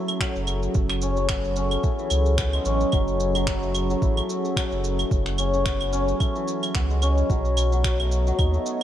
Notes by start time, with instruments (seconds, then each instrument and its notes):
Already playing: santur F#3 A3 B3 C#4 E4, ambient pad F#3 C#4 G#4 A4
0.08 claves, shaker
0.20 santur F#3, finger snap, kick, shaker
0.36 sub bass F#1, shaker
0.47 claves, shaker
0.63 shaker
0.74 sub bass F#1, kick, shaker
0.90 finger snap, claves, shaker
1.02 santur C#4, shaker
1.17 santur C#4, shaker
1.29 santur B3, finger snap, kick, claves, shaker
1.44 shaker
1.56 santur C#4, shaker
1.71 claves, shaker
1.84 santur A3, kick, shaker
1.99 santur E3, shaker
2.10 sub bass C#2, claves, shaker
2.26 shaker
2.38 santur B3, finger snap, kick, shaker
2.53 santur G#3, claves, shaker
2.65 sub bass A1, santur C#4, shaker
2.81 shaker
2.92 sub bass F#1, santur F#3, kick, claves, shaker
3.08 shaker
3.20 shaker
3.35 santur F#3, claves, shaker
3.47 santur F#3, finger snap, kick, shaker
3.63 santur A3, shaker
3.75 claves, shaker
3.90 santur F#3, shaker
4.02 sub bass A1, santur E4, kick, shaker
4.17 santur A3, claves, shaker
4.29 shaker
4.45 shaker
4.57 santur F#3, finger snap, kick, claves, shaker
4.72 sub bass F#1, shaker
4.84 shaker
4.99 claves, shaker
5.11 sub bass F#1, kick, shaker
5.26 finger snap, shaker
5.38 santur C#4, claves, shaker
5.54 santur C#4, shaker
5.66 santur B3, finger snap, kick, shaker
5.81 claves, shaker
5.93 santur C#4, shaker
6.08 shaker
6.20 santur A3, kick, claves, shaker
6.36 santur E3, shaker
6.48 shaker
6.63 claves, shaker
6.75 sub bass C#2, santur B3, finger snap, kick, shaker
6.90 santur G#3, shaker
7.02 santur C#4, claves, shaker
7.18 shaker
7.30 sub bass B1, santur F#3, ambient pad B3 F#4 C#5 D#5, kick, shaker
7.45 shaker
7.57 claves, shaker
7.72 santur F#3, shaker
7.84 santur F#3, finger snap, kick, shaker
8.00 santur A3, claves, shaker
8.12 shaker
8.27 santur F#3, shaker
8.39 sub bass D#2, santur D#4, kick, claves, shaker
8.54 santur A3, shaker
8.66 shaker